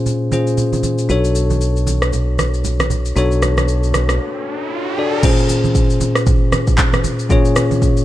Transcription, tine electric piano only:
0.00 0.29 A#2 medium
0.00 0.29 C#4 medium
0.00 0.30 F4 medium
0.00 0.30 G#4 medium
0.00 0.30 C5 medium
0.32 1.09 A#2 medium
0.32 1.10 C#4 medium
0.32 1.10 F4 medium
0.32 1.10 G#4 medium
0.32 1.10 C5 medium
1.09 3.12 D4 medium
1.09 3.12 F#4 medium
1.09 3.13 A4 medium
1.09 3.13 C#5 medium
3.16 4.93 D4 medium
3.16 4.94 F#4 medium
3.16 4.94 A4 medium
3.16 4.95 C#5 medium
4.98 5.23 D4 medium
4.98 5.24 F#4 medium
4.98 5.24 A4 medium
4.98 5.24 D5 medium
5.23 7.26 A#2 medium
5.23 7.26 C#4 medium
5.23 7.26 F4 medium
5.23 7.27 G#4 medium
5.23 7.27 C5 medium
7.30 8.05 A#2 medium
7.30 8.05 C#4 medium
7.30 8.05 F4 medium
7.30 8.05 G#4 medium
7.30 8.05 C#5 medium

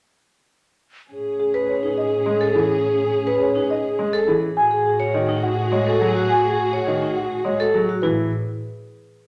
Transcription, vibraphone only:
1.54 1.73 B4 medium
1.83 2.02 D#4 medium
2.41 2.60 A4 medium
3.27 3.46 B4 medium
3.55 3.75 D#4 medium
4.13 4.32 A4 medium
4.71 4.90 G#4 medium
5.00 5.19 C#5 medium
5.29 5.48 D#4 medium
5.86 6.06 A4 medium
6.15 6.34 F#4 medium
6.44 6.63 G#4 medium
6.73 6.92 C#5 medium
7.02 7.21 D#4 medium
7.60 7.79 A4 medium
7.89 8.08 F#4 medium
8.03 8.30 E4 medium

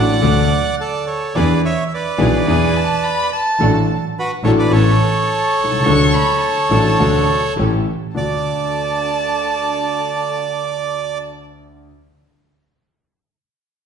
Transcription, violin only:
2.47 2.78 G#5 medium
2.76 3.05 A5 loud
3.03 3.32 B5 loud
3.33 3.99 A5 loud
5.29 5.86 A5 medium
5.84 6.15 C#6 loud
6.14 6.39 B5 loud
6.40 7.52 A5 loud
8.15 11.17 A5 medium

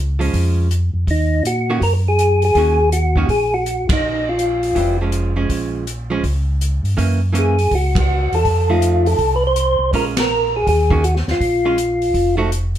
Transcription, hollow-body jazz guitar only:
0.19 0.67 F3 medium
0.19 0.67 G#3 medium
0.19 0.68 C#4 medium
1.70 1.81 D#3 medium
1.70 1.81 A#3 medium
1.70 1.81 C#4 medium
1.70 1.81 F#4 medium
2.57 2.77 D#3 soft
2.57 2.77 A#3 soft
2.57 2.77 C#4 soft
2.57 2.78 F#4 medium
3.17 3.28 D#3 medium
3.17 3.28 A#3 medium
3.17 3.28 C#4 medium
3.17 3.28 F#4 medium
4.75 4.97 E3 soft
4.75 4.97 G3 soft
4.75 4.98 C4 soft
5.01 5.32 F3 soft
5.01 5.33 G#3 soft
5.01 5.33 C#4 soft
5.36 5.84 F3 soft
5.36 5.84 G#3 medium
5.36 5.84 C#4 medium
6.10 6.22 F3 medium
6.10 6.23 G#3 medium
6.10 6.23 C#4 medium
6.97 7.19 E3 medium
6.97 7.19 A#3 medium
6.97 7.19 C#4 medium
7.33 7.55 E3 medium
7.33 7.55 A#3 medium
7.33 7.56 C#4 medium
8.70 9.16 F3 medium
8.70 9.17 A3 medium
8.70 9.17 D#4 medium
9.94 10.15 G#3 medium
9.94 10.15 C#4 medium
9.94 10.15 F4 medium
10.91 11.02 D#3 medium
10.91 11.02 A#3 medium
10.91 11.02 C#4 medium
10.91 11.03 F#4 medium
11.65 11.76 G#3 soft
11.65 11.77 C#4 medium
11.65 11.77 F4 medium
12.37 12.49 F3 medium
12.37 12.49 A3 medium
12.37 12.50 D#4 medium
12.37 12.50 F#4 medium

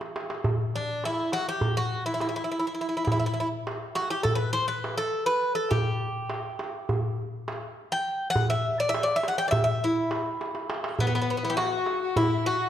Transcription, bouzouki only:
0.75 1.05 D4 medium
1.05 1.33 E4 medium
1.33 1.48 F#4 medium
1.49 1.77 G4 medium
1.77 2.05 F#4 medium
2.06 2.13 E4 medium
2.14 2.20 E4 medium
2.21 2.28 E4 soft
2.29 2.35 E4 soft
2.36 2.43 E4 medium
2.44 2.50 E4 soft
2.52 2.58 E4 medium
2.59 2.66 E4 soft
2.67 2.73 E4 soft
2.74 2.80 E4 soft
2.81 2.88 E4 medium
2.89 2.96 E4 soft
2.97 3.03 E4 soft
3.05 3.11 E4 soft
3.12 3.18 E4 medium
3.19 3.25 E4 soft
3.26 3.32 E4 medium
3.34 3.39 E4 soft
3.40 3.47 E4 medium
3.95 4.10 F#4 medium
4.10 4.23 G4 medium
4.23 4.35 A4 medium
4.35 4.52 B4 medium
4.53 4.67 C5 medium
4.68 4.97 B4 medium
4.97 5.26 A4 medium
5.26 5.54 B4 medium
5.55 5.71 A4 medium
5.71 7.16 G4 medium
7.92 8.30 G5 medium
8.30 8.49 F#5 medium
8.50 8.80 E5 medium
8.80 8.89 D5 medium
8.89 9.04 E5 medium
9.03 9.16 D5 medium
9.16 9.28 E5 medium
9.28 9.38 F#5 medium
9.38 9.46 G5 medium
9.48 9.50 D5 medium
9.48 9.63 E5 medium
9.64 9.84 E5 medium
9.84 10.73 E4 medium
11.00 11.06 B3 medium
11.07 11.14 B3 medium
11.15 11.20 B3 medium
11.21 11.29 B3 medium
11.30 11.36 B3 medium
11.37 11.43 B3 medium
11.45 11.52 B3 medium
11.50 11.56 G4 medium
11.57 12.16 F#4 medium
12.17 12.46 E4 medium
12.46 12.69 F#4 medium

